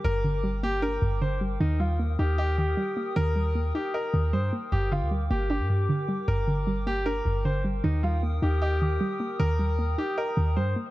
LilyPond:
<<
  \new Staff \with { instrumentName = "Ambient pad" } { \time 4/4 \key ees \lydian \tempo 4 = 154 << { d'''1 | ees'''1~ | ees'''1 | d'''1~ |
d'''1 | ees'''1~ | ees'''1 | } \\ { <bes' g''>1~ | <bes' g''>1~ | <bes' g''>1~ | <bes' g''>1~ |
<bes' g''>1 | <bes' g''>1~ | <bes' g''>1 | } >> }
  \new Staff \with { instrumentName = "Grand piano" } { \time 4/4 \key ees \lydian bes'4. g'8 bes'4 c''8 r8 | ees'8 f'8 r8 g'8 g'8 g'4. | bes'4. g'8 bes'4 c''8 r8 | g'8 f'8 r8 g'8 g'8 g'4. |
bes'4. g'8 bes'4 c''8 r8 | ees'8 f'8 r8 g'8 g'8 g'4. | bes'4. g'8 bes'4 c''8 r8 | }
  \new Staff \with { instrumentName = "Synth pluck" } { \clef bass \time 4/4 \key ees \lydian <g, d g d'>8 d8 g8 bes8 d'8 g,8 d8 g8 | ees8 g8 bes8 ees'8 ees''8 ees8 g8 bes8 | ees8 g8 bes8 ees'8 ees''8 ees8 g8 bes8 | g,8 d8 g8 bes8 d'8 g,8 d8 g8 |
g,8 d8 g8 bes8 d'8 g,8 d8 g8 | ees8 g8 bes8 ees'8 ees''8 ees8 g8 bes8 | ees8 g8 bes8 ees'8 ees''8 ees8 g8 bes8 | }
  \new Staff \with { instrumentName = "808-style bass" } { \clef bass \time 4/4 \key ees \lydian g,,2~ g,,8 g,,4. | ees,4. ees,4. r4 | ees,4. r4 ees,8 g,8 r8 | g,,8. d,8. g,,8. g,8. r4 |
g,,2~ g,,8 g,,4. | ees,4. ees,4. r4 | ees,4. r4 ees,8 g,8 r8 | }
>>